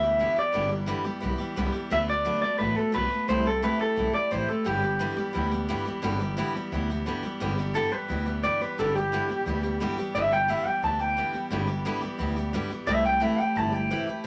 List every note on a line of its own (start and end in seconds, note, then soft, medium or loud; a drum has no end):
0.00 0.22 D2 medium
0.00 0.20 G4 medium
0.00 0.38 E5 loud
0.04 0.19 E3 soft
0.04 0.19 G3 soft
0.04 0.20 B3 soft
0.19 0.37 G2 medium
0.19 0.37 D3 medium
0.19 0.37 E3 medium
0.19 0.37 G3 medium
0.19 0.36 B3 medium
0.19 0.35 G4 medium
0.36 0.52 E3 soft
0.36 0.53 G3 soft
0.36 0.54 B3 medium
0.36 0.54 G4 medium
0.36 0.70 D5 loud
0.36 muted upright bass stroke medium
0.52 0.91 G1 medium
0.52 0.70 G2 medium
0.52 0.71 D3 medium
0.52 0.70 E3 medium
0.52 0.70 G3 medium
0.52 0.69 B3 medium
0.52 0.68 G4 medium
0.69 0.86 E3 soft
0.69 0.86 G3 medium
0.69 0.87 B3 medium
0.69 0.87 G4 medium
0.86 1.04 G2 medium
0.86 1.05 D3 medium
0.86 1.05 E3 loud
0.86 1.05 G3 loud
0.86 1.04 B3 loud
0.86 1.03 G4 loud
1.04 1.19 E3 soft
1.04 1.20 G3 medium
1.04 1.22 B3 medium
1.04 1.22 G4 medium
1.04 muted upright bass stroke medium
1.21 1.37 B1 medium
1.21 1.39 E3 medium
1.21 1.39 G3 medium
1.21 1.38 B3 medium
1.21 1.37 G4 medium
1.38 1.56 E3 medium
1.38 1.56 G3 medium
1.38 1.57 B3 medium
1.38 1.56 G4 medium
1.38 muted upright bass stroke medium
1.56 1.71 C2 medium
1.56 1.74 G2 medium
1.56 1.74 D3 medium
1.56 1.74 E3 medium
1.56 1.73 G3 medium
1.56 1.72 B3 medium
1.56 1.71 G4 medium
1.72 1.91 E3 soft
1.72 1.91 G3 medium
1.72 1.91 B3 medium
1.72 1.90 G4 medium
1.90 2.27 D2 medium
1.90 2.08 D3 medium
1.90 2.08 F#3 medium
1.90 2.08 A3 medium
1.90 2.08 B3 medium
1.90 2.06 F#4 medium
1.90 1.97 E5 loud
2.08 2.24 A3 soft
2.08 2.25 B3 soft
2.08 2.25 F#4 medium
2.08 2.41 D5 loud
2.25 2.42 D3 medium
2.25 2.42 F#3 medium
2.25 2.43 A3 medium
2.25 2.42 B3 medium
2.25 2.40 F#4 medium
2.41 2.58 A3 soft
2.41 2.59 B3 soft
2.41 2.59 F#4 medium
2.41 2.58 D5 loud
2.41 muted upright bass stroke medium
2.58 2.75 A1 medium
2.58 2.76 F#3 medium
2.58 2.76 A3 medium
2.58 2.76 B3 medium
2.58 2.74 F#4 medium
2.58 2.76 B4 medium
2.75 2.92 A3 soft
2.75 2.93 B3 soft
2.75 2.93 F#4 medium
2.75 2.94 A4 medium
2.75 muted upright bass stroke medium
2.92 3.09 B1 medium
2.92 3.10 D3 medium
2.92 3.11 F#3 medium
2.92 3.11 A3 medium
2.92 3.11 B3 medium
2.92 3.09 F#4 medium
2.92 3.29 B4 medium
3.10 3.28 A3 soft
3.10 3.29 B3 medium
3.10 3.28 F#4 medium
3.10 muted upright bass stroke medium
3.28 3.65 C2 medium
3.28 3.45 C3 medium
3.28 3.46 E3 medium
3.28 3.46 A3 medium
3.28 3.46 E4 medium
3.28 3.44 G4 medium
3.28 3.46 C5 loud
3.46 3.62 A3 soft
3.46 3.62 E4 soft
3.46 3.63 G4 soft
3.46 3.64 A4 medium
3.62 3.80 C3 medium
3.62 3.80 E3 medium
3.62 3.80 A3 medium
3.62 3.80 E4 medium
3.62 3.78 G4 medium
3.62 3.79 B4 medium
3.79 3.96 A3 soft
3.79 3.97 E4 soft
3.79 3.97 G4 medium
3.79 4.14 A4 loud
3.79 muted upright bass stroke medium
3.96 4.12 B1 medium
3.96 4.14 E3 medium
3.96 4.14 A3 medium
3.96 4.14 E4 medium
3.96 4.12 G4 medium
4.13 4.31 A3 soft
4.13 4.31 E4 soft
4.13 4.31 G4 medium
4.13 4.32 D5 loud
4.13 muted upright bass stroke medium
4.31 4.46 A1 medium
4.31 4.48 C3 medium
4.31 4.49 E3 medium
4.31 4.49 A3 medium
4.31 4.49 E4 medium
4.31 4.47 G4 medium
4.31 4.49 C5 medium
4.48 4.65 A3 soft
4.48 4.66 E4 soft
4.48 4.66 G4 medium
4.48 4.66 A4 medium
4.48 muted upright bass stroke medium
4.64 5.02 G1 medium
4.64 4.82 G2 medium
4.64 4.83 D3 medium
4.64 4.83 E3 medium
4.64 4.82 G3 medium
4.64 4.82 B3 medium
4.64 7.02 G4 medium
4.64 4.80 G4 medium
4.82 4.99 E3 soft
4.82 4.99 G3 soft
4.82 5.00 B3 medium
4.82 5.00 G4 medium
4.99 5.17 G2 medium
4.99 5.17 D3 medium
4.99 5.18 E3 medium
4.99 5.18 G3 medium
4.99 5.17 B3 medium
4.99 5.15 G4 medium
5.16 5.32 E3 soft
5.16 5.33 G3 medium
5.16 5.34 B3 medium
5.16 5.34 G4 medium
5.16 muted upright bass stroke medium
5.33 5.71 D2 medium
5.33 5.51 E3 medium
5.33 5.52 G3 medium
5.33 5.51 B3 medium
5.33 5.50 G4 medium
5.51 5.69 E3 soft
5.51 5.68 G3 medium
5.51 5.69 B3 medium
5.51 5.69 G4 medium
5.68 5.86 G2 medium
5.68 5.86 D3 medium
5.68 5.87 E3 medium
5.68 5.86 G3 medium
5.68 5.85 B3 medium
5.68 5.84 G4 loud
5.85 6.02 E3 soft
5.85 6.02 G3 medium
5.85 6.03 B3 medium
5.85 6.03 G4 medium
5.85 muted upright bass stroke medium
6.02 6.39 G1 medium
6.02 6.20 G2 medium
6.02 6.20 D3 loud
6.02 6.20 E3 medium
6.02 6.21 G3 medium
6.02 6.20 B3 loud
6.02 6.18 G4 loud
6.19 6.37 E3 medium
6.19 6.37 G3 medium
6.19 6.38 B3 medium
6.19 6.37 G4 medium
6.37 6.54 G2 loud
6.37 6.55 D3 medium
6.37 6.55 E3 loud
6.37 6.55 G3 medium
6.37 6.54 B3 loud
6.37 6.53 G4 medium
6.54 6.71 E3 soft
6.54 6.72 G3 medium
6.54 6.72 B3 medium
6.54 6.72 G4 medium
6.54 muted upright bass stroke medium
6.72 7.08 D2 medium
6.72 6.89 E3 medium
6.72 6.90 G3 medium
6.72 6.90 B3 medium
6.72 6.89 G4 medium
6.90 7.06 E3 soft
6.90 7.06 G3 medium
6.90 7.07 B3 medium
6.90 7.07 G4 medium
7.06 7.23 G2 medium
7.06 7.24 D3 medium
7.06 7.24 E3 medium
7.06 7.24 G3 medium
7.06 7.23 B3 medium
7.06 7.22 G4 medium
7.23 7.40 E3 soft
7.23 7.40 G3 medium
7.23 7.41 B3 medium
7.23 7.40 G4 medium
7.23 muted upright bass stroke medium
7.40 7.77 G1 medium
7.40 7.58 G2 medium
7.40 7.58 D3 medium
7.40 7.58 E3 medium
7.40 7.58 G3 medium
7.40 7.58 B3 loud
7.40 7.56 G4 medium
7.57 7.74 E3 medium
7.57 7.74 G3 medium
7.57 7.75 B3 medium
7.57 7.75 G4 medium
7.74 7.92 G2 medium
7.74 7.92 D3 medium
7.74 7.92 E3 medium
7.74 7.92 G3 medium
7.74 7.91 B3 medium
7.74 7.90 G4 medium
7.74 7.92 A4 medium
7.91 8.07 E3 soft
7.91 8.08 G3 soft
7.91 8.09 B3 soft
7.91 8.09 G4 medium
7.91 8.42 B4 medium
7.91 muted upright bass stroke medium
8.08 8.45 D2 medium
8.08 8.26 E3 medium
8.08 8.26 G3 medium
8.08 8.26 B3 medium
8.08 8.24 G4 medium
8.26 8.43 E3 soft
8.26 8.43 G3 soft
8.26 8.44 B3 medium
8.26 8.43 G4 medium
8.43 8.60 G2 medium
8.43 8.61 D3 medium
8.43 8.61 E3 medium
8.43 8.61 G3 medium
8.43 8.60 B3 medium
8.43 8.59 G4 medium
8.43 8.62 D5 medium
8.61 8.78 E3 soft
8.61 8.78 G3 medium
8.61 8.78 B3 medium
8.61 8.78 G4 medium
8.61 8.78 B4 medium
8.61 muted upright bass stroke medium
8.78 9.14 G1 medium
8.78 8.95 G2 medium
8.78 8.95 D3 medium
8.78 8.96 E3 medium
8.78 8.96 G3 medium
8.78 8.96 B3 medium
8.78 8.95 G4 medium
8.78 8.95 A4 medium
8.96 9.12 E3 soft
8.96 9.13 G3 soft
8.96 9.13 B3 medium
8.96 9.95 G4 medium
8.96 9.13 G4 medium
9.12 9.29 G2 medium
9.12 9.30 D3 medium
9.12 9.30 E3 medium
9.12 9.30 G3 medium
9.12 9.29 B3 medium
9.12 9.28 G4 medium
9.29 9.45 E3 soft
9.29 9.46 G3 medium
9.29 9.47 B3 medium
9.29 9.46 G4 medium
9.29 muted upright bass stroke medium
9.46 9.82 D2 medium
9.46 9.63 E3 medium
9.46 9.64 G3 medium
9.46 9.63 B3 medium
9.46 9.62 G4 medium
9.63 9.80 E3 medium
9.63 9.80 G3 soft
9.63 9.81 B3 medium
9.63 9.80 G4 medium
9.80 9.97 G2 medium
9.80 9.98 D3 medium
9.80 9.98 E3 medium
9.80 9.98 G3 medium
9.80 9.98 B3 medium
9.80 9.96 G4 loud
9.98 10.15 E3 medium
9.98 10.15 G3 medium
9.98 10.15 B3 medium
9.98 10.15 G4 medium
9.98 muted upright bass stroke medium
10.15 10.51 G1 medium
10.15 10.32 G2 medium
10.15 10.32 D3 medium
10.15 10.32 E3 medium
10.15 10.32 G3 medium
10.15 10.31 B3 medium
10.15 10.30 G4 medium
10.15 10.31 E5 loud
10.31 10.48 E3 soft
10.31 10.49 G3 medium
10.31 10.49 B3 medium
10.31 10.49 G4 medium
10.31 10.50 G5 medium
10.48 10.66 G2 medium
10.48 10.66 D3 medium
10.48 10.66 E3 medium
10.48 10.66 G3 medium
10.48 10.65 B3 medium
10.48 10.64 G4 medium
10.48 10.67 E5 medium
10.65 10.81 E3 soft
10.65 10.83 G3 soft
10.65 10.83 B3 soft
10.65 10.83 G4 medium
10.65 10.83 G5 medium
10.65 muted upright bass stroke medium
10.82 11.19 D2 medium
10.82 11.00 E3 medium
10.82 11.00 G3 medium
10.82 10.99 B3 medium
10.82 10.98 G4 medium
10.82 11.00 A5 medium
10.99 11.17 E3 soft
10.99 11.17 G3 soft
10.99 11.17 B3 medium
10.99 11.17 G4 medium
10.99 11.67 G5 medium
11.17 11.34 G2 medium
11.17 11.34 D3 medium
11.17 11.35 E3 medium
11.17 11.34 G3 medium
11.17 11.33 B3 medium
11.17 11.32 G4 medium
11.33 11.51 E3 soft
11.33 11.51 G3 soft
11.33 11.51 B3 medium
11.33 11.51 G4 medium
11.33 muted upright bass stroke medium
11.50 11.87 G1 medium
11.50 11.68 G2 medium
11.50 11.69 D3 medium
11.50 11.69 E3 medium
11.50 11.68 G3 medium
11.50 11.67 B3 loud
11.50 11.66 G4 loud
11.67 11.84 E3 soft
11.67 11.85 G3 medium
11.67 11.85 B3 medium
11.67 11.85 G4 medium
11.85 12.02 G2 medium
11.85 12.03 D3 medium
11.85 12.03 E3 loud
11.85 12.02 G3 medium
11.85 12.01 B3 loud
11.85 12.00 G4 loud
12.01 12.17 E3 medium
12.01 12.18 G3 medium
12.01 12.19 B3 medium
12.01 12.19 G4 medium
12.01 muted upright bass stroke medium
12.18 12.55 D2 medium
12.18 12.36 E3 medium
12.18 12.36 G3 medium
12.18 12.35 B3 medium
12.18 12.35 G4 medium
12.36 12.53 E3 soft
12.36 12.53 G3 medium
12.36 12.54 B3 medium
12.36 12.53 G4 medium
12.53 12.71 G2 medium
12.53 12.71 D3 medium
12.53 12.71 E3 medium
12.53 12.71 G3 medium
12.53 12.70 B3 medium
12.53 12.69 G4 loud
12.70 12.87 G3 medium
12.70 12.88 B3 medium
12.70 12.88 G4 medium
12.70 muted upright bass stroke medium
12.87 13.23 C2 medium
12.87 13.04 C3 medium
12.87 13.05 E3 medium
12.87 13.05 A3 medium
12.87 13.04 E4 medium
12.87 13.03 G4 medium
12.87 13.04 E5 medium
13.04 13.20 A3 soft
13.04 13.20 E4 medium
13.04 13.21 G4 medium
13.04 13.22 G5 medium
13.20 13.38 C3 medium
13.20 13.38 E3 medium
13.20 13.38 A3 medium
13.20 13.39 E4 medium
13.20 13.37 G4 medium
13.20 13.40 E5 medium
13.38 13.55 A3 soft
13.38 13.56 E4 medium
13.38 13.56 G4 medium
13.38 13.57 G5 medium
13.38 muted upright bass stroke medium
13.55 13.92 G1 medium
13.55 13.73 E3 medium
13.55 13.73 A3 medium
13.55 13.73 E4 medium
13.55 13.71 G4 medium
13.55 13.74 A5 medium
13.72 13.90 A3 soft
13.72 13.90 E4 medium
13.72 13.90 G4 medium
13.72 14.27 G5 medium
13.90 14.07 C3 medium
13.90 14.08 E3 medium
13.90 14.08 A3 medium
13.90 14.08 E4 medium
13.90 14.06 G4 medium
14.07 14.24 A3 soft
14.07 14.25 E4 medium
14.07 14.24 G4 medium
14.07 muted upright bass stroke medium